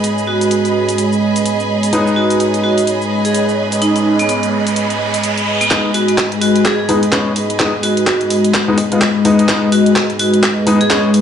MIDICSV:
0, 0, Header, 1, 7, 480
1, 0, Start_track
1, 0, Key_signature, 5, "minor"
1, 0, Tempo, 472441
1, 38, Time_signature, 4, 2, 24, 8
1, 11392, End_track
2, 0, Start_track
2, 0, Title_t, "String section"
2, 0, Program_c, 0, 48
2, 0, Note_on_c, 0, 68, 68
2, 0, Note_on_c, 0, 75, 73
2, 0, Note_on_c, 0, 83, 68
2, 11392, Note_off_c, 0, 68, 0
2, 11392, Note_off_c, 0, 75, 0
2, 11392, Note_off_c, 0, 83, 0
2, 11392, End_track
3, 0, Start_track
3, 0, Title_t, "Analog synth pad"
3, 0, Program_c, 1, 89
3, 0, Note_on_c, 1, 56, 71
3, 0, Note_on_c, 1, 68, 67
3, 0, Note_on_c, 1, 71, 67
3, 0, Note_on_c, 1, 73, 82
3, 5757, Note_off_c, 1, 56, 0
3, 5757, Note_off_c, 1, 68, 0
3, 5757, Note_off_c, 1, 71, 0
3, 5759, Note_off_c, 1, 73, 0
3, 5799, Note_on_c, 1, 68, 69
3, 5799, Note_on_c, 1, 71, 69
3, 5799, Note_on_c, 1, 75, 82
3, 5800, Note_on_c, 1, 56, 77
3, 11392, Note_off_c, 1, 56, 0
3, 11392, Note_off_c, 1, 68, 0
3, 11392, Note_off_c, 1, 71, 0
3, 11392, Note_off_c, 1, 75, 0
3, 11392, End_track
4, 0, Start_track
4, 0, Title_t, "Vibraphone"
4, 0, Program_c, 2, 11
4, 278, Note_on_c, 2, 66, 82
4, 959, Note_off_c, 2, 66, 0
4, 2198, Note_on_c, 2, 66, 84
4, 2407, Note_off_c, 2, 66, 0
4, 2679, Note_on_c, 2, 66, 83
4, 2888, Note_off_c, 2, 66, 0
4, 3300, Note_on_c, 2, 68, 82
4, 3496, Note_off_c, 2, 68, 0
4, 3878, Note_on_c, 2, 63, 80
4, 3969, Note_off_c, 2, 63, 0
4, 4021, Note_on_c, 2, 63, 70
4, 4083, Note_off_c, 2, 63, 0
4, 4262, Note_on_c, 2, 59, 84
4, 4324, Note_off_c, 2, 59, 0
4, 4360, Note_on_c, 2, 59, 73
4, 4450, Note_off_c, 2, 59, 0
4, 5701, Note_on_c, 2, 59, 86
4, 5798, Note_off_c, 2, 59, 0
4, 6038, Note_on_c, 2, 66, 82
4, 6248, Note_off_c, 2, 66, 0
4, 6518, Note_on_c, 2, 66, 84
4, 6727, Note_off_c, 2, 66, 0
4, 6759, Note_on_c, 2, 68, 81
4, 6849, Note_off_c, 2, 68, 0
4, 6900, Note_on_c, 2, 68, 72
4, 6963, Note_off_c, 2, 68, 0
4, 7957, Note_on_c, 2, 66, 80
4, 8638, Note_off_c, 2, 66, 0
4, 9879, Note_on_c, 2, 66, 84
4, 10088, Note_off_c, 2, 66, 0
4, 10359, Note_on_c, 2, 66, 88
4, 10568, Note_off_c, 2, 66, 0
4, 10981, Note_on_c, 2, 68, 89
4, 11176, Note_off_c, 2, 68, 0
4, 11392, End_track
5, 0, Start_track
5, 0, Title_t, "Grand piano"
5, 0, Program_c, 3, 0
5, 0, Note_on_c, 3, 56, 71
5, 0, Note_on_c, 3, 59, 67
5, 0, Note_on_c, 3, 63, 80
5, 1934, Note_off_c, 3, 63, 0
5, 1935, Note_off_c, 3, 56, 0
5, 1935, Note_off_c, 3, 59, 0
5, 1958, Note_on_c, 3, 59, 68
5, 1958, Note_on_c, 3, 63, 81
5, 1959, Note_on_c, 3, 56, 75
5, 5775, Note_off_c, 3, 56, 0
5, 5775, Note_off_c, 3, 59, 0
5, 5775, Note_off_c, 3, 63, 0
5, 5798, Note_on_c, 3, 56, 70
5, 5798, Note_on_c, 3, 59, 65
5, 5798, Note_on_c, 3, 63, 76
5, 5972, Note_off_c, 3, 56, 0
5, 5972, Note_off_c, 3, 59, 0
5, 5972, Note_off_c, 3, 63, 0
5, 6999, Note_on_c, 3, 56, 89
5, 6999, Note_on_c, 3, 59, 82
5, 6999, Note_on_c, 3, 63, 96
5, 7116, Note_off_c, 3, 56, 0
5, 7116, Note_off_c, 3, 59, 0
5, 7116, Note_off_c, 3, 63, 0
5, 7238, Note_on_c, 3, 56, 88
5, 7238, Note_on_c, 3, 59, 85
5, 7238, Note_on_c, 3, 61, 98
5, 7412, Note_off_c, 3, 56, 0
5, 7412, Note_off_c, 3, 59, 0
5, 7412, Note_off_c, 3, 61, 0
5, 7717, Note_on_c, 3, 63, 106
5, 7718, Note_on_c, 3, 56, 94
5, 7718, Note_on_c, 3, 59, 82
5, 7836, Note_off_c, 3, 56, 0
5, 7836, Note_off_c, 3, 59, 0
5, 7836, Note_off_c, 3, 63, 0
5, 8821, Note_on_c, 3, 56, 92
5, 8821, Note_on_c, 3, 59, 83
5, 8821, Note_on_c, 3, 63, 103
5, 8901, Note_off_c, 3, 56, 0
5, 8901, Note_off_c, 3, 63, 0
5, 8902, Note_off_c, 3, 59, 0
5, 9061, Note_on_c, 3, 56, 75
5, 9061, Note_on_c, 3, 59, 68
5, 9061, Note_on_c, 3, 65, 79
5, 9141, Note_off_c, 3, 59, 0
5, 9142, Note_off_c, 3, 56, 0
5, 9142, Note_off_c, 3, 65, 0
5, 9398, Note_on_c, 3, 59, 90
5, 9399, Note_on_c, 3, 56, 95
5, 9399, Note_on_c, 3, 63, 103
5, 9615, Note_off_c, 3, 56, 0
5, 9615, Note_off_c, 3, 59, 0
5, 9615, Note_off_c, 3, 63, 0
5, 9638, Note_on_c, 3, 56, 78
5, 9638, Note_on_c, 3, 59, 70
5, 9812, Note_off_c, 3, 56, 0
5, 9812, Note_off_c, 3, 59, 0
5, 10837, Note_on_c, 3, 56, 92
5, 10837, Note_on_c, 3, 59, 81
5, 10837, Note_on_c, 3, 63, 98
5, 10956, Note_off_c, 3, 56, 0
5, 10956, Note_off_c, 3, 59, 0
5, 10956, Note_off_c, 3, 63, 0
5, 11077, Note_on_c, 3, 56, 98
5, 11077, Note_on_c, 3, 59, 88
5, 11078, Note_on_c, 3, 61, 104
5, 11252, Note_off_c, 3, 56, 0
5, 11252, Note_off_c, 3, 59, 0
5, 11252, Note_off_c, 3, 61, 0
5, 11392, End_track
6, 0, Start_track
6, 0, Title_t, "Riser"
6, 0, Program_c, 4, 103
6, 1958, Note_on_c, 4, 60, 69
6, 5798, Note_off_c, 4, 60, 0
6, 11392, End_track
7, 0, Start_track
7, 0, Title_t, "Drums"
7, 39, Note_on_c, 9, 42, 59
7, 42, Note_on_c, 9, 82, 52
7, 141, Note_off_c, 9, 42, 0
7, 144, Note_off_c, 9, 82, 0
7, 185, Note_on_c, 9, 82, 31
7, 286, Note_off_c, 9, 82, 0
7, 421, Note_on_c, 9, 42, 48
7, 424, Note_on_c, 9, 82, 63
7, 519, Note_off_c, 9, 42, 0
7, 519, Note_on_c, 9, 42, 60
7, 522, Note_off_c, 9, 82, 0
7, 522, Note_on_c, 9, 82, 53
7, 620, Note_off_c, 9, 42, 0
7, 624, Note_off_c, 9, 82, 0
7, 661, Note_on_c, 9, 42, 33
7, 664, Note_on_c, 9, 82, 33
7, 762, Note_off_c, 9, 42, 0
7, 766, Note_off_c, 9, 82, 0
7, 900, Note_on_c, 9, 42, 49
7, 904, Note_on_c, 9, 82, 64
7, 998, Note_off_c, 9, 42, 0
7, 998, Note_on_c, 9, 42, 61
7, 1001, Note_off_c, 9, 82, 0
7, 1001, Note_on_c, 9, 82, 56
7, 1100, Note_off_c, 9, 42, 0
7, 1103, Note_off_c, 9, 82, 0
7, 1144, Note_on_c, 9, 82, 32
7, 1246, Note_off_c, 9, 82, 0
7, 1381, Note_on_c, 9, 42, 48
7, 1384, Note_on_c, 9, 82, 65
7, 1478, Note_off_c, 9, 42, 0
7, 1478, Note_on_c, 9, 42, 58
7, 1482, Note_off_c, 9, 82, 0
7, 1482, Note_on_c, 9, 82, 53
7, 1580, Note_off_c, 9, 42, 0
7, 1583, Note_off_c, 9, 82, 0
7, 1624, Note_on_c, 9, 82, 33
7, 1726, Note_off_c, 9, 82, 0
7, 1861, Note_on_c, 9, 42, 47
7, 1864, Note_on_c, 9, 82, 65
7, 1958, Note_off_c, 9, 42, 0
7, 1958, Note_on_c, 9, 42, 62
7, 1962, Note_off_c, 9, 82, 0
7, 1962, Note_on_c, 9, 82, 53
7, 2060, Note_off_c, 9, 42, 0
7, 2063, Note_off_c, 9, 82, 0
7, 2105, Note_on_c, 9, 82, 31
7, 2207, Note_off_c, 9, 82, 0
7, 2341, Note_on_c, 9, 42, 50
7, 2345, Note_on_c, 9, 82, 67
7, 2439, Note_off_c, 9, 42, 0
7, 2439, Note_on_c, 9, 42, 59
7, 2442, Note_off_c, 9, 82, 0
7, 2442, Note_on_c, 9, 82, 52
7, 2541, Note_off_c, 9, 42, 0
7, 2544, Note_off_c, 9, 82, 0
7, 2581, Note_on_c, 9, 42, 34
7, 2584, Note_on_c, 9, 82, 33
7, 2683, Note_off_c, 9, 42, 0
7, 2686, Note_off_c, 9, 82, 0
7, 2821, Note_on_c, 9, 42, 50
7, 2825, Note_on_c, 9, 82, 66
7, 2919, Note_off_c, 9, 42, 0
7, 2919, Note_on_c, 9, 42, 64
7, 2922, Note_off_c, 9, 82, 0
7, 2922, Note_on_c, 9, 82, 57
7, 3020, Note_off_c, 9, 42, 0
7, 3024, Note_off_c, 9, 82, 0
7, 3065, Note_on_c, 9, 82, 33
7, 3167, Note_off_c, 9, 82, 0
7, 3301, Note_on_c, 9, 42, 48
7, 3304, Note_on_c, 9, 82, 66
7, 3398, Note_off_c, 9, 42, 0
7, 3398, Note_on_c, 9, 42, 62
7, 3401, Note_off_c, 9, 82, 0
7, 3401, Note_on_c, 9, 82, 55
7, 3500, Note_off_c, 9, 42, 0
7, 3503, Note_off_c, 9, 82, 0
7, 3544, Note_on_c, 9, 82, 33
7, 3646, Note_off_c, 9, 82, 0
7, 3780, Note_on_c, 9, 42, 52
7, 3784, Note_on_c, 9, 82, 66
7, 3878, Note_off_c, 9, 42, 0
7, 3878, Note_on_c, 9, 42, 60
7, 3881, Note_off_c, 9, 82, 0
7, 3881, Note_on_c, 9, 82, 52
7, 3979, Note_off_c, 9, 42, 0
7, 3983, Note_off_c, 9, 82, 0
7, 4020, Note_on_c, 9, 42, 35
7, 4024, Note_on_c, 9, 82, 32
7, 4122, Note_off_c, 9, 42, 0
7, 4125, Note_off_c, 9, 82, 0
7, 4261, Note_on_c, 9, 42, 50
7, 4264, Note_on_c, 9, 82, 64
7, 4358, Note_off_c, 9, 42, 0
7, 4358, Note_on_c, 9, 42, 63
7, 4362, Note_off_c, 9, 82, 0
7, 4362, Note_on_c, 9, 82, 53
7, 4460, Note_off_c, 9, 42, 0
7, 4463, Note_off_c, 9, 82, 0
7, 4501, Note_on_c, 9, 42, 37
7, 4505, Note_on_c, 9, 82, 33
7, 4603, Note_off_c, 9, 42, 0
7, 4606, Note_off_c, 9, 82, 0
7, 4741, Note_on_c, 9, 42, 51
7, 4745, Note_on_c, 9, 82, 63
7, 4839, Note_off_c, 9, 42, 0
7, 4839, Note_on_c, 9, 42, 64
7, 4842, Note_off_c, 9, 82, 0
7, 4842, Note_on_c, 9, 82, 53
7, 4940, Note_off_c, 9, 42, 0
7, 4944, Note_off_c, 9, 82, 0
7, 4981, Note_on_c, 9, 42, 35
7, 4984, Note_on_c, 9, 82, 32
7, 5083, Note_off_c, 9, 42, 0
7, 5086, Note_off_c, 9, 82, 0
7, 5222, Note_on_c, 9, 42, 54
7, 5225, Note_on_c, 9, 82, 65
7, 5319, Note_off_c, 9, 42, 0
7, 5319, Note_on_c, 9, 42, 65
7, 5322, Note_off_c, 9, 82, 0
7, 5322, Note_on_c, 9, 82, 54
7, 5420, Note_off_c, 9, 42, 0
7, 5424, Note_off_c, 9, 82, 0
7, 5461, Note_on_c, 9, 42, 37
7, 5465, Note_on_c, 9, 82, 33
7, 5563, Note_off_c, 9, 42, 0
7, 5566, Note_off_c, 9, 82, 0
7, 5701, Note_on_c, 9, 42, 51
7, 5704, Note_on_c, 9, 82, 64
7, 5798, Note_on_c, 9, 36, 111
7, 5799, Note_off_c, 9, 42, 0
7, 5799, Note_on_c, 9, 39, 45
7, 5799, Note_on_c, 9, 42, 63
7, 5806, Note_off_c, 9, 82, 0
7, 5900, Note_off_c, 9, 36, 0
7, 5900, Note_off_c, 9, 39, 0
7, 5900, Note_off_c, 9, 42, 0
7, 6038, Note_on_c, 9, 46, 94
7, 6140, Note_off_c, 9, 46, 0
7, 6181, Note_on_c, 9, 42, 50
7, 6278, Note_off_c, 9, 42, 0
7, 6278, Note_on_c, 9, 36, 111
7, 6278, Note_on_c, 9, 39, 45
7, 6278, Note_on_c, 9, 42, 64
7, 6380, Note_off_c, 9, 36, 0
7, 6380, Note_off_c, 9, 39, 0
7, 6380, Note_off_c, 9, 42, 0
7, 6421, Note_on_c, 9, 42, 36
7, 6518, Note_on_c, 9, 46, 98
7, 6522, Note_off_c, 9, 42, 0
7, 6619, Note_off_c, 9, 46, 0
7, 6660, Note_on_c, 9, 42, 50
7, 6758, Note_off_c, 9, 42, 0
7, 6758, Note_on_c, 9, 36, 108
7, 6758, Note_on_c, 9, 39, 48
7, 6758, Note_on_c, 9, 42, 66
7, 6860, Note_off_c, 9, 36, 0
7, 6860, Note_off_c, 9, 39, 0
7, 6860, Note_off_c, 9, 42, 0
7, 6998, Note_on_c, 9, 46, 98
7, 7100, Note_off_c, 9, 46, 0
7, 7140, Note_on_c, 9, 42, 53
7, 7237, Note_off_c, 9, 42, 0
7, 7237, Note_on_c, 9, 39, 49
7, 7237, Note_on_c, 9, 42, 66
7, 7238, Note_on_c, 9, 36, 111
7, 7339, Note_off_c, 9, 39, 0
7, 7339, Note_off_c, 9, 42, 0
7, 7340, Note_off_c, 9, 36, 0
7, 7477, Note_on_c, 9, 46, 95
7, 7579, Note_off_c, 9, 46, 0
7, 7619, Note_on_c, 9, 42, 52
7, 7717, Note_off_c, 9, 42, 0
7, 7717, Note_on_c, 9, 39, 51
7, 7717, Note_on_c, 9, 42, 61
7, 7718, Note_on_c, 9, 36, 116
7, 7818, Note_off_c, 9, 39, 0
7, 7818, Note_off_c, 9, 42, 0
7, 7820, Note_off_c, 9, 36, 0
7, 7957, Note_on_c, 9, 46, 96
7, 8059, Note_off_c, 9, 46, 0
7, 8099, Note_on_c, 9, 42, 50
7, 8197, Note_off_c, 9, 42, 0
7, 8197, Note_on_c, 9, 39, 51
7, 8197, Note_on_c, 9, 42, 62
7, 8198, Note_on_c, 9, 36, 116
7, 8299, Note_off_c, 9, 39, 0
7, 8299, Note_off_c, 9, 42, 0
7, 8300, Note_off_c, 9, 36, 0
7, 8339, Note_on_c, 9, 42, 37
7, 8437, Note_on_c, 9, 46, 105
7, 8441, Note_off_c, 9, 42, 0
7, 8539, Note_off_c, 9, 46, 0
7, 8580, Note_on_c, 9, 42, 52
7, 8678, Note_off_c, 9, 42, 0
7, 8678, Note_on_c, 9, 36, 110
7, 8678, Note_on_c, 9, 39, 52
7, 8678, Note_on_c, 9, 42, 65
7, 8780, Note_off_c, 9, 36, 0
7, 8780, Note_off_c, 9, 39, 0
7, 8780, Note_off_c, 9, 42, 0
7, 8917, Note_on_c, 9, 46, 109
7, 8918, Note_on_c, 9, 36, 60
7, 9019, Note_off_c, 9, 46, 0
7, 9020, Note_off_c, 9, 36, 0
7, 9060, Note_on_c, 9, 42, 53
7, 9157, Note_off_c, 9, 42, 0
7, 9157, Note_on_c, 9, 39, 55
7, 9157, Note_on_c, 9, 42, 63
7, 9158, Note_on_c, 9, 36, 116
7, 9259, Note_off_c, 9, 39, 0
7, 9259, Note_off_c, 9, 42, 0
7, 9260, Note_off_c, 9, 36, 0
7, 9398, Note_on_c, 9, 46, 106
7, 9499, Note_off_c, 9, 46, 0
7, 9541, Note_on_c, 9, 42, 52
7, 9638, Note_off_c, 9, 42, 0
7, 9638, Note_on_c, 9, 36, 118
7, 9638, Note_on_c, 9, 39, 57
7, 9638, Note_on_c, 9, 42, 64
7, 9739, Note_off_c, 9, 39, 0
7, 9739, Note_off_c, 9, 42, 0
7, 9740, Note_off_c, 9, 36, 0
7, 9878, Note_on_c, 9, 46, 107
7, 9979, Note_off_c, 9, 46, 0
7, 10020, Note_on_c, 9, 42, 52
7, 10118, Note_off_c, 9, 42, 0
7, 10118, Note_on_c, 9, 36, 120
7, 10118, Note_on_c, 9, 39, 57
7, 10118, Note_on_c, 9, 42, 61
7, 10219, Note_off_c, 9, 39, 0
7, 10219, Note_off_c, 9, 42, 0
7, 10220, Note_off_c, 9, 36, 0
7, 10260, Note_on_c, 9, 42, 33
7, 10357, Note_on_c, 9, 46, 110
7, 10361, Note_off_c, 9, 42, 0
7, 10458, Note_off_c, 9, 46, 0
7, 10500, Note_on_c, 9, 42, 49
7, 10598, Note_off_c, 9, 42, 0
7, 10598, Note_on_c, 9, 36, 122
7, 10598, Note_on_c, 9, 39, 61
7, 10598, Note_on_c, 9, 42, 65
7, 10700, Note_off_c, 9, 36, 0
7, 10700, Note_off_c, 9, 39, 0
7, 10700, Note_off_c, 9, 42, 0
7, 10838, Note_on_c, 9, 46, 106
7, 10939, Note_off_c, 9, 46, 0
7, 10981, Note_on_c, 9, 42, 52
7, 11078, Note_off_c, 9, 42, 0
7, 11078, Note_on_c, 9, 36, 116
7, 11078, Note_on_c, 9, 39, 62
7, 11078, Note_on_c, 9, 42, 60
7, 11180, Note_off_c, 9, 36, 0
7, 11180, Note_off_c, 9, 39, 0
7, 11180, Note_off_c, 9, 42, 0
7, 11318, Note_on_c, 9, 46, 101
7, 11392, Note_off_c, 9, 46, 0
7, 11392, End_track
0, 0, End_of_file